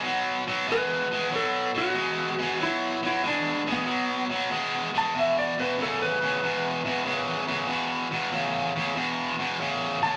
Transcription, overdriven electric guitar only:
X:1
M:4/4
L:1/8
Q:"Swing" 1/4=94
K:Bm
V:1 name="Overdriven electric guitar" clef=bass
[B,,F,] [B,,F,] [B,,^G,] [B,,G,] [B,,F,] [B,,F,] [B,,G,] [B,,G,] | [B,,F,] [B,,F,] [B,,^G,] [B,,G,] [B,,F,] [B,,F,] [B,,G,] [B,,G,] | [E,,B,,] [E,,B,,] [E,,C,] [E,,C,] [E,,B,,] [E,,B,,] [E,,C,] [E,,C,] | [E,,B,,] [E,,B,,] [E,,C,] [E,,C,] [E,,B,,] [E,,B,,] [E,,C,] [E,,C,] |]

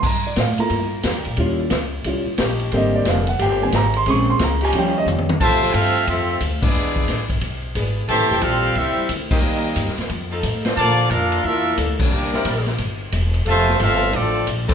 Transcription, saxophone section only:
X:1
M:4/4
L:1/8
Q:"Swing" 1/4=179
K:F
V:1 name="Saxophone section"
z6 [F,B,DG]2 | z6 [F,_D_EG]2 | [D,B,CG]3 z [D,B,CG]3 z | [F,B,_A]3 [F,_D_EG]3 z2 |
z [F,CFA]3 z4 | z6 [E,=B,D^G]2 | z [E,A,CG] z4 z [_E,B,CG] | z4 z [F,C_EA]2 [F,B,Dc]- |
[F,B,Dc]2 z4 [F,B,DA]2 | z [G,CEB]3 z4 | [F,CFA]3 z4 [G,C_EA] |]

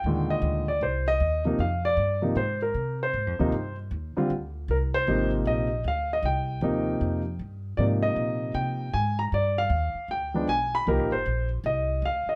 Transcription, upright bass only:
X:1
M:4/4
L:1/8
Q:"Swing" 1/4=155
K:Cm
V:1 name="Upright bass" clef=bass
E,,2 D,,2 C,,2 E,,2 | F,,2 G,,2 A,,2 C,2 | (3A,, F,, E,, G,,2 E,, z D,,2 | C,,2 A,,,2 B,,,2 D,,2 |
C,,2 E,,2 F,,2 G,,2 | A,,2 B,,2 C,2 A,,2 | G,,2 E,, z D,,2 =B,,,2 | (3C,, B,,, G,,, B,,,2 C,,2 D,, z |]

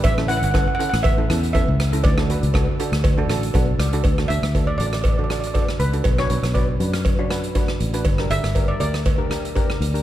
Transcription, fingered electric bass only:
X:1
M:4/4
L:1/16
Q:"Swing 16ths" 1/4=120
K:D
V:1 name="Fingered electric bass" clef=bass
A,,,3 G,,,2 z2 A,,,3 E,,3 C,,3 | D,,3 C,,2 z2 D,,3 A,,,2 B,,,2 C,,2 | D,,2 D,, D,,3 A,,,8 C,,2 | B,,,2 B,,, B,,,3 F,,8 A,,,2 |
G,,,2 G,,, G,,,3 D,,8 D,,2 |]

